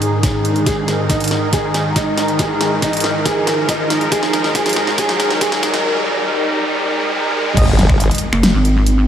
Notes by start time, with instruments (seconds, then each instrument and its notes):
Already playing: analog synth pad G#2 D#3 D#4 G#4, grand piano G#4, riser
0.02 closed hi-hat
0.23 kick, snare, closed hi-hat
0.45 closed hi-hat
0.56 closed hi-hat
0.66 grand piano G#4, analog synth pad A#4, kick, snare, closed hi-hat
0.88 snare, closed hi-hat
1.10 grand piano D#4, kick, snare, closed hi-hat
1.20 closed hi-hat
1.24 closed hi-hat
1.28 snare, closed hi-hat
1.53 grand piano G#4, kick, snare, closed hi-hat
1.74 snare, closed hi-hat
1.96 grand piano D#4, kick, snare, closed hi-hat
2.17 snare, closed hi-hat
2.28 closed hi-hat
2.39 grand piano G#4, kick, snare, closed hi-hat
2.61 snare, closed hi-hat
2.82 grand piano D#4, kick, snare, closed hi-hat
2.93 closed hi-hat
2.97 closed hi-hat
3.00 snare, closed hi-hat
3.25 grand piano G#4, kick, snare, closed hi-hat
3.47 snare, closed hi-hat
3.69 grand piano D#4, kick, snare, closed hi-hat
3.90 snare, closed hi-hat
4.01 closed hi-hat
4.12 grand piano G#4, kick, snare, closed hi-hat
4.23 snare
4.33 snare, closed hi-hat
4.44 snare
4.55 grand piano G#4, kick, snare, closed hi-hat
4.66 snare, closed hi-hat
4.69 closed hi-hat
4.73 snare, closed hi-hat
4.87 snare
4.98 grand piano G#4, kick, snare, closed hi-hat
5.09 snare
5.20 snare, closed hi-hat
5.30 snare
5.41 grand piano G#4, kick, snare, closed hi-hat
5.52 snare
5.63 snare, closed hi-hat
5.74 snare, closed hi-hat
7.57 wobble bass G#1, analog synth pad D#3 G#3 D#4, brass ensemble G#3 D#4 D#5, kick, closed hi-hat, crash, impact
7.79 snare, closed hi-hat
7.89 wobble bass G#1, finger snap, kick
8.00 closed hi-hat
8.11 closed hi-hat
8.15 closed hi-hat
8.18 closed hi-hat
8.33 wobble bass F#1, finger snap
8.43 snare, closed hi-hat
8.54 wobble bass G#1
8.65 closed hi-hat
8.87 closed hi-hat